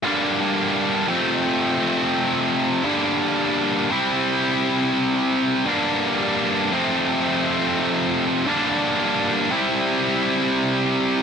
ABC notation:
X:1
M:4/4
L:1/8
Q:1/4=85
K:Gdor
V:1 name="Distorted electric guitar" clef=bass
[G,,D,G,B,D]3 [F,,C,F,A,C]4- [F,,C,F,A,C] | [G,,D,G,B,D]3 [C,G,CE]4- [C,G,CE] | [G,,D,G,B,D]3 [F,,C,F,A,C]4- [F,,C,F,A,C] | [G,,D,G,B,D]3 [C,G,CE]4- [C,G,CE] |]